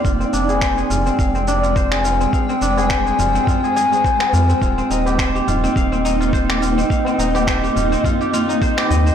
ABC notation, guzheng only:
X:1
M:4/4
L:1/16
Q:"Swing 16ths" 1/4=105
K:Fdor
V:1 name="Guzheng"
F C D A c A F C f C D F c A F C | f C D A c A F C F A A A c A F C | F C E G c G F C f C E F c G F C | f C E G c G F C F G F E c G e c |]